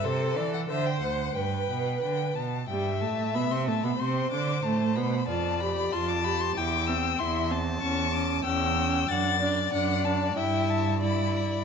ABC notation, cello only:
X:1
M:2/4
L:1/16
Q:1/4=93
K:G
V:1 name="Cello" clef=bass
C,2 E,2 D,2 D,,2 | G,,2 B,,2 D,2 B,,2 | [K:C] G,,2 A,,2 B,, C, A,, B,, | C,2 D,2 A,,2 B,,2 |
F,,4 F,,4 | E,,4 E,,4 | [K:D] E,,4 E,,4 | F,,4 F,,4 |
G,,8 |]